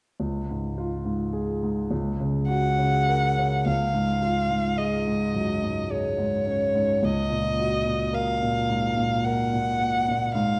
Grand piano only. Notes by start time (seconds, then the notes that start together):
0.20 C#2
0.50 G#2
0.78 F4
1.05 G#2
1.33 G#4
1.63 G#2
1.91 C#2
2.20 C#3
2.48 F#4
2.79 C#3
3.08 A#4
3.38 C#3
3.66 C#2
3.94 G#2
4.22 F4
4.50 G#2
4.78 G#4
5.07 G#2
5.34 F#2
5.63 G#2
5.90 G#4
6.18 G#2
6.46 C#4
6.75 G#2
7.03 C#2
7.30 A#2
7.59 F#4
7.86 A#2
8.13 A#4
8.42 A#2
8.69 G#2
8.97 A#2
9.26 A#4
9.53 A#2
9.80 A#3
10.09 A#2
10.35 G#2